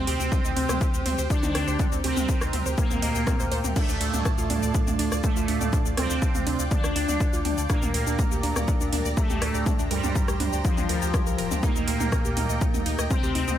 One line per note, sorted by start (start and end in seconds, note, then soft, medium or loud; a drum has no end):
0.00 1.21 C3 loud
0.00 1.21 C4 loud
0.00 3.72 G4 medium
0.00 1.75 C5 medium
0.00 3.72 G5 loud
0.07 0.17 D2 loud
0.07 0.19 G4 medium
0.07 open hi-hat loud
0.07 ride medium
0.20 0.29 D2 medium
0.20 0.31 C4 medium
0.20 shaker medium
0.32 0.44 G5 medium
0.32 kick loud
0.32 mid tom loud
0.32 shaker medium
0.45 0.54 D2 medium
0.45 0.56 D#4 medium
0.45 shaker medium
0.56 0.66 D2 medium
0.56 0.69 C4 medium
0.56 open hi-hat medium
0.56 ride medium
0.69 0.78 D2 medium
0.69 0.81 C5 medium
0.69 cross-stick medium
0.69 mid tom loud
0.69 shaker medium
0.81 0.86 C4 medium
0.81 kick loud
0.81 shaker medium
0.94 1.03 D2 medium
0.94 1.05 C4 medium
0.94 shaker medium
1.06 1.16 D2 loud
1.06 1.18 C4 loud
1.06 mid tom loud
1.06 open hi-hat loud
1.06 ride medium
1.18 1.28 D2 loud
1.18 1.30 C5 loud
1.18 shaker medium
1.30 1.95 D3 loud
1.30 1.95 D4 loud
1.30 1.42 G5 medium
1.30 kick loud
1.30 shaker medium
1.43 1.52 D2 medium
1.43 1.48 D#4 medium
1.43 mid tom medium
1.43 shaker medium
1.55 1.65 D2 medium
1.55 1.67 C4 medium
1.55 cross-stick medium
1.55 open hi-hat medium
1.55 ride medium
1.68 1.77 D2 loud
1.68 1.79 C5 medium
1.68 shaker medium
1.79 1.88 C4 loud
1.79 3.74 A#4 medium
1.79 kick loud
1.79 mid tom medium
1.79 shaker medium
1.92 2.01 D2 medium
1.92 2.03 C4 medium
1.92 shaker medium
2.04 2.14 D2 loud
2.04 2.68 C3 loud
2.04 2.68 C4 loud
2.04 2.16 G4 medium
2.04 open hi-hat loud
2.04 ride medium
2.17 2.26 D2 medium
2.17 2.28 C4 medium
2.17 mid tom loud
2.17 shaker medium
2.29 2.41 G5 medium
2.29 kick loud
2.29 shaker medium
2.41 2.51 D2 medium
2.41 2.53 D#4 medium
2.41 cross-stick medium
2.41 shaker medium
2.53 2.63 D2 medium
2.53 2.65 C4 medium
2.53 mid tom medium
2.53 open hi-hat loud
2.53 ride medium
2.66 2.75 D2 medium
2.66 2.77 C5 medium
2.66 shaker medium
2.78 3.67 A#2 loud
2.78 3.67 A#3 loud
2.78 2.83 C4 medium
2.78 kick loud
2.78 shaker medium
2.91 3.00 D2 medium
2.91 3.02 C4 medium
2.91 mid tom medium
2.91 shaker medium
3.02 3.12 D2 loud
3.02 3.08 D#5 medium
3.02 open hi-hat loud
3.02 ride medium
3.15 3.24 D2 medium
3.15 3.26 G5 medium
3.15 shaker medium
3.27 3.36 C4 loud
3.27 kick loud
3.27 cross-stick soft
3.27 mid tom medium
3.27 shaker medium
3.40 3.49 D2 medium
3.40 3.48 C5 medium
3.40 shaker medium
3.52 3.61 D2 loud
3.52 3.60 C5 loud
3.52 open hi-hat medium
3.52 ride medium
3.64 3.73 D2 medium
3.64 3.69 C4 medium
3.64 mid tom loud
3.64 shaker medium
3.76 5.14 A2 loud
3.76 5.14 A3 loud
3.76 3.85 D4 loud
3.76 7.66 F4 medium
3.76 9.62 D5 medium
3.76 5.71 A5 medium
3.76 kick loud
3.76 mid tom medium
3.76 crash medium
3.76 shaker medium
3.89 3.98 D2 medium
3.89 4.00 D4 medium
3.89 shaker medium
4.01 4.11 D2 loud
4.01 4.13 A4 medium
4.01 open hi-hat loud
4.01 ride medium
4.14 4.23 D2 medium
4.14 4.25 D4 medium
4.14 mid tom loud
4.14 shaker medium
4.25 4.38 A5 medium
4.25 kick loud
4.25 cross-stick medium
4.25 shaker medium
4.38 4.47 D2 medium
4.38 4.49 F4 medium
4.38 shaker medium
4.50 4.60 D2 loud
4.50 4.62 D4 medium
4.50 mid tom loud
4.50 open hi-hat loud
4.50 ride medium
4.63 4.72 D2 loud
4.63 4.74 D5 medium
4.63 shaker medium
4.75 4.80 D4 medium
4.75 kick loud
4.75 shaker medium
4.87 4.96 D2 medium
4.87 4.98 D4 medium
4.87 mid tom loud
4.87 shaker medium
4.99 5.09 D2 loud
4.99 5.11 D4 loud
4.99 open hi-hat loud
4.99 ride medium
5.12 5.21 D2 medium
5.12 5.23 D5 loud
5.12 cross-stick soft
5.12 shaker medium
5.24 5.88 A2 loud
5.24 5.88 A3 loud
5.24 5.36 A5 medium
5.24 kick loud
5.24 mid tom medium
5.24 shaker medium
5.36 5.46 D2 medium
5.36 5.41 F4 medium
5.36 shaker medium
5.48 5.58 D2 loud
5.48 5.60 D4 medium
5.48 open hi-hat medium
5.48 ride medium
5.61 5.70 D2 medium
5.61 5.72 D5 medium
5.61 mid tom medium
5.61 shaker medium
5.73 5.82 D4 loud
5.73 7.68 G5 medium
5.73 kick loud
5.73 shaker medium
5.86 5.95 D2 medium
5.86 5.97 D4 medium
5.86 shaker medium
5.97 6.07 D2 loud
5.97 6.62 C3 loud
5.97 6.62 C4 loud
5.97 6.10 A4 medium
5.97 cross-stick medium
5.97 mid tom medium
5.97 open hi-hat loud
5.97 ride medium
6.10 6.19 D2 medium
6.10 6.21 D4 medium
6.10 shaker medium
6.22 6.34 A5 medium
6.22 kick loud
6.22 shaker medium
6.35 6.44 D2 medium
6.35 6.46 F4 medium
6.35 mid tom medium
6.35 shaker medium
6.47 6.57 D2 medium
6.47 6.59 D4 medium
6.47 open hi-hat loud
6.47 ride medium
6.59 6.69 D2 medium
6.59 6.71 D5 medium
6.59 shaker medium
6.71 7.60 D3 loud
6.71 7.60 D4 loud
6.71 6.77 D4 medium
6.71 kick loud
6.71 mid tom loud
6.71 shaker medium
6.84 6.93 D2 medium
6.84 6.95 D4 medium
6.84 cross-stick medium
6.84 shaker medium
6.96 7.06 D2 loud
6.96 7.08 D4 loud
6.96 open hi-hat loud
6.96 ride medium
7.09 7.18 D2 medium
7.09 7.20 D5 loud
7.09 mid tom medium
7.09 shaker medium
7.20 7.33 A5 medium
7.20 kick loud
7.20 shaker medium
7.33 7.42 D2 medium
7.33 7.38 F4 medium
7.33 shaker medium
7.45 7.55 D2 loud
7.45 7.57 D4 medium
7.45 mid tom medium
7.45 open hi-hat medium
7.45 ride medium
7.58 7.67 D2 loud
7.58 7.69 D5 medium
7.58 shaker medium
7.70 9.08 A#2 loud
7.70 9.08 A#3 loud
7.70 7.79 D4 loud
7.70 13.58 G4 medium
7.70 13.58 A#5 loud
7.70 kick loud
7.70 cross-stick medium
7.70 shaker medium
7.82 7.92 D2 medium
7.82 7.94 D4 medium
7.82 mid tom medium
7.82 shaker medium
7.94 8.04 D2 loud
7.94 8.06 A#4 medium
7.94 open hi-hat loud
7.94 ride medium
8.07 8.16 D2 medium
8.07 8.18 D4 medium
8.07 shaker medium
8.19 8.31 A#5 medium
8.19 kick loud
8.19 mid tom medium
8.19 shaker medium
8.32 8.41 D2 medium
8.32 8.43 G4 medium
8.32 shaker medium
8.43 8.53 D2 medium
8.43 8.56 D4 medium
8.43 open hi-hat loud
8.43 ride medium
8.56 8.65 D2 loud
8.56 8.67 D5 medium
8.56 cross-stick medium
8.56 mid tom medium
8.56 shaker medium
8.68 8.73 D4 medium
8.68 kick loud
8.68 shaker medium
8.81 8.90 D2 medium
8.81 8.91 D4 medium
8.81 shaker medium
8.93 9.02 D2 loud
8.93 9.05 D4 loud
8.93 mid tom medium
8.93 open hi-hat loud
8.93 ride medium
9.05 9.14 D2 medium
9.05 9.17 D5 loud
9.05 shaker medium
9.17 9.81 A2 loud
9.17 9.81 A3 loud
9.17 9.29 A#5 medium
9.17 kick loud
9.17 shaker medium
9.30 9.39 D2 medium
9.30 9.35 G4 medium
9.30 mid tom medium
9.30 shaker medium
9.42 9.52 D2 loud
9.42 9.54 D4 medium
9.42 cross-stick soft
9.42 open hi-hat loud
9.42 ride medium
9.54 9.64 D2 medium
9.54 9.66 D5 medium
9.54 shaker medium
9.66 9.75 D4 loud
9.66 11.61 C5 medium
9.66 kick loud
9.66 mid tom medium
9.66 shaker medium
9.79 9.88 D2 medium
9.79 9.90 D4 medium
9.79 shaker medium
9.91 10.01 D2 loud
9.91 10.55 G2 loud
9.91 10.55 G3 loud
9.91 10.03 A#4 medium
9.91 open hi-hat loud
9.91 ride medium
10.04 10.13 D2 medium
10.04 10.15 D4 medium
10.04 mid tom medium
10.04 shaker medium
10.15 10.28 A#5 medium
10.15 kick loud
10.15 shaker medium
10.28 10.37 D2 medium
10.28 10.40 G4 medium
10.28 cross-stick medium
10.28 shaker medium
10.40 10.50 D2 medium
10.40 10.52 D4 medium
10.40 mid tom medium
10.40 open hi-hat loud
10.40 ride medium
10.53 10.62 D2 medium
10.53 10.64 D5 medium
10.53 shaker medium
10.65 11.54 F3 loud
10.65 10.70 D4 medium
10.65 kick loud
10.65 shaker medium
10.77 10.87 D2 medium
10.77 10.89 D4 medium
10.77 mid tom medium
10.77 shaker medium
10.89 10.99 D2 loud
10.89 10.98 A#4 medium
10.89 open hi-hat loud
10.89 ride medium
11.02 11.11 D2 medium
11.02 11.10 G4 medium
11.02 shaker medium
11.14 11.23 G4 medium
11.14 kick loud
11.14 cross-stick medium
11.14 mid tom medium
11.14 shaker medium
11.27 11.40 C2 medium
11.27 11.35 A#4 medium
11.27 shaker medium
11.38 11.48 D1 medium
11.38 11.47 A#4 medium
11.38 open hi-hat medium
11.38 ride medium
11.51 11.60 D2 medium
11.51 11.62 D4 medium
11.51 mid tom medium
11.51 shaker medium
11.63 13.01 A#2 loud
11.63 13.01 A#3 loud
11.63 11.72 D#4 loud
11.63 13.58 G5 medium
11.63 kick loud
11.63 mid tom medium
11.63 shaker medium
11.76 11.85 D2 medium
11.76 11.87 D#4 medium
11.76 shaker medium
11.88 11.98 D2 loud
11.88 12.00 A#4 medium
11.88 open hi-hat loud
11.88 ride medium
12.00 12.10 D2 medium
12.00 12.12 D#4 medium
12.00 mid tom loud
12.00 shaker medium
12.12 12.24 A#5 medium
12.12 kick loud
12.12 cross-stick medium
12.12 shaker medium
12.25 12.34 D2 medium
12.25 12.36 G4 medium
12.25 shaker medium
12.37 12.47 D2 loud
12.37 12.49 D#4 medium
12.37 mid tom loud
12.37 open hi-hat loud
12.37 ride medium
12.50 12.59 D2 medium
12.50 12.61 D#5 medium
12.50 shaker medium
12.61 12.67 D#4 medium
12.61 kick loud
12.61 shaker medium
12.74 12.83 D2 medium
12.74 12.85 D#4 medium
12.74 mid tom medium
12.74 shaker medium
12.86 12.96 D2 loud
12.86 12.98 D#4 loud
12.86 open hi-hat loud
12.86 ride medium
12.99 13.08 D2 medium
12.99 13.10 D#5 loud
12.99 cross-stick medium
12.99 shaker medium
13.10 13.58 C3 loud
13.10 13.58 C4 loud
13.10 13.23 A#5 medium
13.10 kick loud
13.10 mid tom medium
13.10 shaker medium
13.23 13.33 D2 medium
13.23 13.28 G4 medium
13.23 shaker medium
13.35 13.45 D2 loud
13.35 13.47 D#4 medium
13.35 open hi-hat medium
13.35 ride medium
13.48 13.57 D2 medium
13.48 13.58 D#5 medium
13.48 mid tom medium
13.48 shaker medium